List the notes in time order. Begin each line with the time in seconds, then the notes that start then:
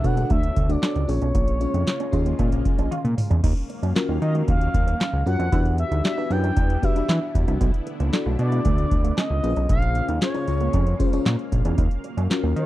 Already playing: D3 A3 B3 D4 F#5
0.04 B2 D4 F#4 A4 C#5 F#5, muted clean electric guitar stroke, kick, closed hi-hat
0.17 G#3 D4 F#4 A4 C#5, closed hi-hat
0.30 D2 A3 E5, kick, closed hi-hat
0.43 closed hi-hat
0.56 D2, muted clean electric guitar stroke, kick, closed hi-hat
0.69 A3 D4 F#4 A4 C#5 D5, closed hi-hat
0.82 C#4 D4 F#4 A4 C#5, snare, clap, closed hi-hat
0.96 C#2, closed hi-hat
1.08 A#1 C#3 G#3 A#3 C#4 F4 G#4 C#5, muted clean electric guitar stroke, open hi-hat
1.22 B1 C#4, closed hi-hat
1.35 A#1 A#3, kick, closed hi-hat
1.48 closed hi-hat
1.60 C#4 F4 G#4 C#5, muted clean electric guitar stroke, closed hi-hat
1.74 F2 D#4, closed hi-hat
1.87 snare, clap, closed hi-hat
2.00 C#4, closed hi-hat
2.12 D#2 C#4 F4 G#4 D#5 C6, muted clean electric guitar stroke, kick, closed hi-hat
2.26 A#3, closed hi-hat
2.39 A#2 C#4 G#5, kick, closed hi-hat
2.52 A#1, closed hi-hat
2.65 muted clean electric guitar stroke, kick, closed hi-hat
2.78 A#1 C#4, closed hi-hat
2.91 F4 F5, closed hi-hat, high tom
3.04 A#2, closed hi-hat, mid tom
3.18 muted clean electric guitar stroke, mid tom, open hi-hat
3.30 E2 C#4, closed hi-hat, floor tom
3.44 D#2 D#3 F#3 A#3 C#4 D#4 F5, kick, closed hi-hat, crash
3.57 closed hi-hat
3.70 muted clean electric guitar stroke, closed hi-hat
3.83 F#2 C#4, closed hi-hat
3.95 C#4 F4 F#4 A#4, snare, clap, closed hi-hat
4.09 D#2 A#3
4.22 D#3 D#5, muted clean electric guitar stroke, closed hi-hat
4.35 G#3, closed hi-hat
4.48 D#2 A#3 F5, kick, closed hi-hat
4.61 closed hi-hat
4.74 D#2, muted clean electric guitar stroke, kick, closed hi-hat
4.87 A#3, closed hi-hat
5.00 C#4, snare, clap, closed hi-hat
5.13 C#2
5.26 F#2 C#4 F4 F#4 A#4 F#5, muted clean electric guitar stroke, closed hi-hat
5.39 F2 C#4, closed hi-hat
5.52 E2 E3 G3 B3 D4 E4 F#4 G4 B4, kick, closed hi-hat
5.65 closed hi-hat
5.78 E5, muted clean electric guitar stroke, closed hi-hat
5.91 D2 D#4, closed hi-hat
6.04 D4 F#4 G4 D5 E5, snare, clap, closed hi-hat
6.17 D4 F#4 G4 B4
6.30 F#2 D4 E4 G4 B4 G5, muted clean electric guitar stroke, closed hi-hat
6.43 C#4, closed hi-hat
6.56 E2 D4, kick, closed hi-hat
6.70 closed hi-hat
6.82 D4 F#4 G4 B4 E5, muted clean electric guitar stroke, kick, closed hi-hat
6.96 D4 F#4 G4 D5, closed hi-hat
7.09 E3 E4, snare, clap, closed hi-hat
7.35 E2, muted clean electric guitar stroke, kick, closed hi-hat
7.48 C2 D4, closed hi-hat
7.61 B1 D3 A3 B3 D4, kick, closed hi-hat
7.74 closed hi-hat
7.87 muted clean electric guitar stroke, closed hi-hat
8.00 C#2 A#3, closed hi-hat
8.13 D4 F#4 A4 D5, snare, clap, closed hi-hat
8.26 B1 A3
8.39 B2 D5, muted clean electric guitar stroke, closed hi-hat
8.52 G#3, closed hi-hat
8.65 D2 A3, kick, closed hi-hat
8.78 closed hi-hat
8.91 D2, muted clean electric guitar stroke, kick, closed hi-hat
9.04 A3, closed hi-hat
9.11 D5
9.17 C#4 D#5, snare, clap, closed hi-hat
9.30 C#2
9.43 A#1 C#3 G#3 A#3 C#4 F4 G#4 B4 F5, muted clean electric guitar stroke, closed hi-hat
9.50 C5
9.56 B1 C#4, closed hi-hat
9.69 A#1 A#3 F5, kick, closed hi-hat
9.82 closed hi-hat
9.95 muted clean electric guitar stroke, closed hi-hat
10.08 D#2 D#4, closed hi-hat
10.21 C#4 F4 G#4 C5 C#5, snare, clap, closed hi-hat
10.34 C#4 F4 G#4 C5, closed hi-hat
10.47 C#2 C#4 F4 G#4 C#5, muted clean electric guitar stroke, closed hi-hat
10.60 A#3, closed hi-hat
10.73 F2 C#4, kick, closed hi-hat
10.87 closed hi-hat
10.99 C#4 F4 G#4 C5, muted clean electric guitar stroke, kick, closed hi-hat
11.05 C5
11.13 C#4 F4 G#4 C#5, closed hi-hat
11.26 A#2 F4, snare, clap, closed hi-hat
11.39 closed hi-hat
11.52 A#1, muted clean electric guitar stroke, kick, closed hi-hat
11.65 E2 C#4, closed hi-hat
11.78 D#2 D#3 F#3 C#4 D#4, kick, closed hi-hat
11.91 closed hi-hat
12.04 muted clean electric guitar stroke, closed hi-hat
12.17 F#2 C#4, closed hi-hat
12.30 C#4 F4 F#4 A#4, snare, clap, closed hi-hat
12.43 D#2 A#3
12.56 D#3 C#5, muted clean electric guitar stroke, closed hi-hat